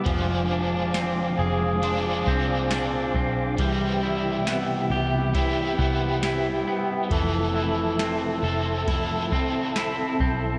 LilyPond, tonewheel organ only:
\new Staff \with { instrumentName = "Tonewheel organ" } { \time 4/4 \key f \lydian \tempo 4 = 68 << { <c'' aes'' d'''>1 | <g' g''>1 | <a' a''>1 | } \\ { f''1 | e''1~ | e''1 | } >> }